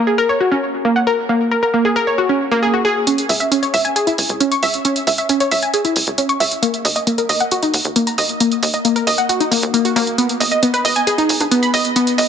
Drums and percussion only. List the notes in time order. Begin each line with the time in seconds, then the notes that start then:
3.07 closed hi-hat
3.18 closed hi-hat
3.29 open hi-hat
3.40 closed hi-hat
3.52 closed hi-hat
3.63 closed hi-hat
3.74 open hi-hat
3.85 closed hi-hat
3.96 closed hi-hat
4.07 closed hi-hat
4.18 open hi-hat
4.29 closed hi-hat
4.41 closed hi-hat
4.52 closed hi-hat
4.63 open hi-hat
4.74 closed hi-hat
4.85 closed hi-hat
4.96 closed hi-hat
5.07 open hi-hat
5.18 closed hi-hat
5.29 closed hi-hat
5.40 closed hi-hat
5.51 open hi-hat
5.63 closed hi-hat
5.74 closed hi-hat
5.85 closed hi-hat
5.96 open hi-hat
6.07 closed hi-hat
6.18 closed hi-hat
6.29 closed hi-hat
6.40 open hi-hat
6.51 closed hi-hat
6.63 closed hi-hat
6.74 closed hi-hat
6.85 open hi-hat
6.96 closed hi-hat
7.07 closed hi-hat
7.18 closed hi-hat
7.29 open hi-hat
7.40 closed hi-hat
7.51 closed hi-hat
7.63 closed hi-hat
7.74 open hi-hat
7.85 closed hi-hat
7.96 closed hi-hat
8.07 closed hi-hat
8.18 open hi-hat
8.29 closed hi-hat
8.40 closed hi-hat
8.52 closed hi-hat
8.63 open hi-hat
8.74 closed hi-hat
8.85 closed hi-hat
8.96 closed hi-hat
9.07 open hi-hat
9.18 closed hi-hat
9.29 closed hi-hat
9.41 closed hi-hat
9.52 open hi-hat
9.63 closed hi-hat
9.74 closed hi-hat
9.85 closed hi-hat
9.96 open hi-hat
10.07 closed hi-hat
10.18 closed hi-hat
10.29 closed hi-hat
10.40 open hi-hat
10.52 closed hi-hat
10.63 closed hi-hat
10.74 closed hi-hat
10.85 open hi-hat
10.96 closed hi-hat
11.07 closed hi-hat
11.18 closed hi-hat
11.29 open hi-hat
11.40 closed hi-hat, high conga
11.52 closed hi-hat
11.63 closed hi-hat
11.74 open hi-hat
11.85 closed hi-hat
11.96 closed hi-hat
12.07 closed hi-hat
12.18 open hi-hat